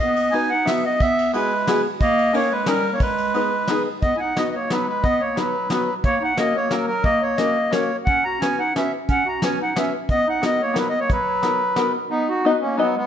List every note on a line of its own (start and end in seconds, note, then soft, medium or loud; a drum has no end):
0.00 0.31 B3 medium
0.00 0.34 D#5 medium
0.16 ride medium
0.31 0.51 B3 medium
0.31 0.50 D#4 medium
0.31 0.51 D#4 soft
0.31 0.51 F#4 medium
0.31 0.52 B4 medium
0.31 0.50 G#5 loud
0.31 ride soft
0.50 0.66 D#4 medium
0.50 0.67 F#5 loud
0.65 0.84 B3 medium
0.65 0.85 B3 medium
0.65 0.84 D#4 medium
0.65 0.85 F#4 medium
0.65 0.85 B4 medium
0.65 0.85 E5 medium
0.65 snare medium
0.65 ride soft
0.85 1.00 B3 medium
0.85 1.01 D#5 medium
1.00 1.32 B3 medium
1.00 1.32 E5 loud
1.00 kick medium
1.00 ride soft
1.18 ride soft
1.33 1.82 G#3 medium
1.33 1.52 B3 medium
1.33 1.52 E4 medium
1.33 1.52 F#4 medium
1.33 1.52 G#4 medium
1.33 1.82 B4 medium
1.33 ride soft
1.67 1.85 B3 medium
1.67 1.85 E4 medium
1.67 1.86 F#4 medium
1.67 1.86 G#4 medium
1.67 snare medium
1.67 ride soft
2.01 2.32 A#3 loud
2.01 2.35 D#5 loud
2.01 kick medium
2.01 ride soft
2.18 ride soft
2.33 2.50 A#3 medium
2.33 2.51 C#4 medium
2.33 2.51 D#4 medium
2.33 2.52 G4 medium
2.33 2.52 A#4 medium
2.33 2.53 C#5 loud
2.33 ride soft
2.52 2.66 G#3 medium
2.52 2.68 B4 medium
2.66 2.91 G3 medium
2.66 2.85 C#4 medium
2.66 2.85 D#4 medium
2.66 2.85 G4 medium
2.66 2.94 A#4 medium
2.66 2.85 A#4 medium
2.66 snare medium
2.66 ride soft
2.93 3.00 A#3 medium
2.93 3.01 C#5 medium
3.00 3.83 G#3 medium
3.00 3.83 B4 medium
3.00 kick medium
3.00 ride soft
3.18 ride soft
3.34 3.52 B3 medium
3.34 3.52 D#4 medium
3.34 3.53 G#4 medium
3.34 3.53 B4 medium
3.34 ride soft
3.67 3.87 B3 medium
3.67 3.87 D#4 medium
3.67 3.88 G#4 medium
3.67 3.87 B4 medium
3.67 snare medium
3.67 ride soft
4.02 4.15 B3 medium
4.02 4.16 D#5 medium
4.02 kick medium
4.02 closed hi-hat soft
4.16 4.20 E4 medium
4.16 4.36 F#5 medium
4.16 4.21 G#5 medium
4.21 4.36 D#4 medium
4.36 4.49 B3 medium
4.36 4.54 B3 medium
4.36 4.55 D#4 medium
4.36 4.55 F#4 medium
4.36 4.55 B4 medium
4.36 4.49 D#5 medium
4.36 snare medium
4.36 closed hi-hat soft
4.51 4.54 B3 soft
4.51 4.55 D#5 soft
4.55 4.69 A#3 medium
4.55 4.71 C#5 medium
4.70 4.87 F#3 medium
4.70 4.88 B3 medium
4.70 4.89 D#4 medium
4.70 4.89 F#4 medium
4.70 4.87 B4 medium
4.70 4.89 B4 medium
4.70 snare medium
4.70 closed hi-hat soft
4.88 5.02 G#3 medium
4.88 5.05 B4 medium
5.03 5.20 B3 medium
5.03 5.22 D#5 medium
5.03 kick medium
5.03 closed hi-hat soft
5.21 5.37 A#3 medium
5.21 5.37 C#5 medium
5.36 5.68 F#3 medium
5.36 5.54 B3 medium
5.36 5.55 D#4 medium
5.36 5.55 F#4 medium
5.36 5.70 B4 medium
5.36 5.55 B4 medium
5.36 snare medium
5.36 closed hi-hat soft
5.70 5.94 F#3 medium
5.70 5.88 B3 medium
5.70 5.88 D#4 medium
5.70 5.89 F#4 medium
5.70 5.94 B4 medium
5.70 5.89 B4 medium
5.70 snare medium
5.70 closed hi-hat soft
6.04 6.20 A#3 medium
6.04 6.23 C#5 loud
6.04 kick medium
6.04 closed hi-hat soft
6.21 6.35 D#4 medium
6.21 6.37 F#5 medium
6.35 6.53 A#3 medium
6.35 6.55 A#3 medium
6.35 6.55 C#4 medium
6.35 6.55 F#4 medium
6.35 6.56 A#4 medium
6.35 6.56 D#5 medium
6.35 snare medium
6.35 closed hi-hat soft
6.55 6.69 A#3 medium
6.55 6.71 C#5 medium
6.69 6.87 F#3 medium
6.69 6.88 A#3 medium
6.69 6.89 C#4 medium
6.69 6.89 F#4 medium
6.69 6.86 A#4 medium
6.69 6.89 A#4 medium
6.69 snare medium
6.69 closed hi-hat soft
6.87 7.03 F#3 medium
6.87 7.04 A#4 loud
7.04 7.21 A#3 medium
7.04 7.23 D#5 loud
7.04 kick medium
7.04 closed hi-hat soft
7.22 7.37 A#3 medium
7.22 7.38 C#5 medium
7.36 7.56 A#3 medium
7.36 7.70 A#3 medium
7.36 7.56 C#4 medium
7.36 7.57 F#4 medium
7.36 7.57 A#4 medium
7.36 7.72 D#5 medium
7.36 snare medium
7.36 closed hi-hat soft
7.71 7.90 A#3 medium
7.71 7.97 A#3 medium
7.71 7.90 C#4 medium
7.71 7.91 F#4 medium
7.71 7.91 A#4 medium
7.71 7.97 C#5 medium
7.71 snare medium
8.05 8.23 C#4 medium
8.05 8.25 F#5 loud
8.05 kick medium
8.05 closed hi-hat soft
8.25 8.39 F#4 medium
8.25 8.41 A#5 medium
8.40 8.59 B3 medium
8.40 8.57 C#4 medium
8.40 8.60 C#4 medium
8.40 8.60 F#4 medium
8.40 8.60 B4 medium
8.40 8.59 G#5 medium
8.40 snare medium
8.40 closed hi-hat soft
8.59 8.73 D#4 medium
8.59 8.74 F#5 medium
8.75 8.93 B3 medium
8.75 8.92 C#4 medium
8.75 8.93 C#4 medium
8.75 8.94 F#4 medium
8.75 8.94 B4 medium
8.75 8.92 E5 medium
8.75 snare medium
8.75 closed hi-hat soft
9.09 9.25 C#4 loud
9.09 9.28 F#5 loud
9.09 kick medium
9.09 closed hi-hat soft
9.26 9.41 F#4 medium
9.26 9.43 A#5 medium
9.42 9.60 B3 medium
9.42 9.59 C#4 medium
9.42 9.60 C#4 medium
9.42 9.61 F#4 medium
9.42 9.61 B4 medium
9.42 9.59 G#5 medium
9.42 snare medium
9.42 closed hi-hat soft
9.61 9.75 D#4 medium
9.61 9.77 F#5 medium
9.76 9.93 B3 medium
9.76 9.92 C#4 medium
9.76 9.93 C#4 medium
9.76 9.94 F#4 medium
9.76 9.94 B4 medium
9.76 9.93 E5 medium
9.76 snare medium
9.76 closed hi-hat soft
10.09 10.26 B3 medium
10.09 10.28 D#5 loud
10.09 kick medium
10.09 closed hi-hat soft
10.27 10.41 D#4 medium
10.27 10.44 F#5 medium
10.42 10.60 B3 medium
10.42 10.59 B3 medium
10.42 10.60 D#4 medium
10.42 10.60 F#4 medium
10.42 10.60 A#4 medium
10.42 10.62 D#5 medium
10.42 snare medium
10.42 closed hi-hat soft
10.62 10.76 A#3 medium
10.62 10.77 C#5 medium
10.74 10.93 B3 medium
10.74 10.93 D#4 medium
10.74 10.93 F#4 medium
10.74 10.94 A#4 medium
10.74 snare medium
10.74 closed hi-hat soft
10.78 10.88 F#3 medium
10.78 10.88 B4 medium
10.89 10.99 B3 medium
10.89 11.00 D#5 medium
11.00 11.10 A#3 medium
11.00 11.11 C#5 medium
11.10 11.92 F#3 medium
11.10 11.92 B4 medium
11.10 kick medium
11.10 closed hi-hat soft
11.42 11.61 B3 medium
11.42 11.61 D#4 medium
11.42 11.61 F#4 soft
11.42 11.62 A#4 medium
11.42 snare medium
11.42 closed hi-hat soft
11.76 11.95 B3 medium
11.76 11.95 D#4 medium
11.76 11.95 F#4 medium
11.76 11.96 A#4 medium
11.76 snare medium
11.76 closed hi-hat soft
12.10 12.28 B3 medium
12.10 12.29 D#4 medium
12.29 12.44 D#4 medium
12.29 12.45 F#4 medium
12.44 12.53 B3 medium
12.44 12.63 B3 medium
12.44 12.53 D#4 medium
12.44 12.63 D#4 medium
12.44 12.63 F#4 medium
12.44 12.63 B4 medium
12.44 12.64 D#5 medium
12.61 12.78 A#3 medium
12.61 12.77 C#4 medium
12.77 12.95 F#3 medium
12.77 12.96 B3 medium
12.77 12.96 D#4 medium
12.77 12.97 F#4 medium
12.77 12.97 B4 medium
12.77 12.97 D#5 medium
12.97 13.06 G#3 medium
12.97 13.06 B3 loud